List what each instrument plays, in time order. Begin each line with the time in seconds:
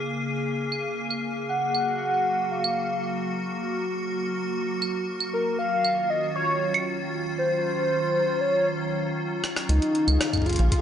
Already playing: ambient pad C#3 A#3 G#4
0.72 claves
1.10 claves
1.49 ambient pad F#3 F#4, soft synth lead F#5
1.75 claves
2.51 soft synth lead F5
2.64 claves
4.82 claves
5.20 claves
5.33 soft synth lead A#4
5.59 ambient pad D#3 F#3 C#4 F4, soft synth lead F5
5.85 claves
6.10 soft synth lead D#5
6.36 soft synth lead C#5
6.74 claves
7.38 soft synth lead C5
8.41 soft synth lead C#5
9.44 cross-stick
9.56 cross-stick
9.69 analog synth bass C#2, ambient pad C#3 A#3 F4, soft synth lead D#4, synth texture G#4 F5, closed hi-hat
9.82 closed hi-hat
9.95 closed hi-hat
10.08 analog synth bass C#2, closed hi-hat, claves
10.21 cross-stick, closed hi-hat
10.33 kick, closed hi-hat, claves
10.38 kick
10.42 kick
10.46 soft synth lead F4, kick, closed hi-hat
10.49 kick, closed hi-hat
10.53 kick, closed hi-hat
10.56 analog synth bass A#1, closed hi-hat
10.59 closed hi-hat
10.72 soft synth lead F4, kick, closed hi-hat